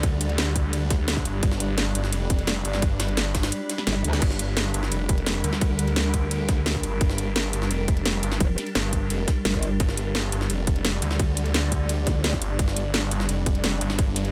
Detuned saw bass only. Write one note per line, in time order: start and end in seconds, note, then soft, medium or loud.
0.00 1.24 D2 loud
1.25 1.41 G1 loud
1.43 1.94 G1 loud
1.95 2.11 G1 medium
2.13 2.29 F1 loud
2.30 2.64 F1 loud
2.65 3.51 G1 loud
4.22 4.73 G1 loud
4.74 4.90 G1 loud
4.92 5.08 F1 loud
5.09 5.43 F1 loud
5.44 6.82 D2 loud
6.83 7.00 G1 loud
7.01 7.52 G1 loud
7.53 7.69 G1 loud
7.71 7.87 F1 loud
7.88 8.22 F1 loud
8.23 8.39 G1 loud
8.75 9.09 G1 loud
9.10 9.26 F1 loud
9.80 10.31 G1 loud
10.32 10.48 G1 loud
10.50 10.66 F1 loud
10.67 11.01 F1 loud
11.02 12.40 D2 loud
12.42 12.58 G1 loud
12.59 13.10 G1 loud
13.11 13.27 G1 loud
13.29 13.45 F1 loud
13.46 13.80 F1 loud
13.81 14.31 G1 loud